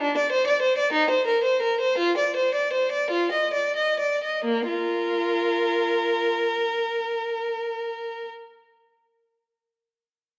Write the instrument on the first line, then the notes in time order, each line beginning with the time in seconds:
violin
0.01 D4
0.17 D5
0.32 C5
0.47 D5
0.62 C5
0.78 D5
0.93 D#4
1.10 C5
1.27 A#4
1.44 C5
1.62 A#4
1.80 C5
1.98 F4
2.17 D5
2.36 C5
2.55 D5
2.73 C5
2.92 D5
3.10 F4
3.32 D#5
3.53 D5
3.76 D#5
4.00 D5
4.24 D#5
4.45 A#3
4.68 F4 A#4